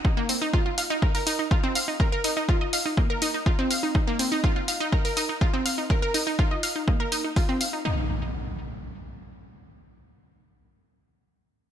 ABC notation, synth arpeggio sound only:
X:1
M:4/4
L:1/16
Q:1/4=123
K:Fphr
V:1 name="Synth arpeggio sound"
E B, C E F F f E B B E E F C f E | B B E E F e f E B, B E E F C f E | E B, C E F F f E B B E E F C f E | B B E E F e f E B, B E E F C f E |
E2 z12 z2 | z16 |]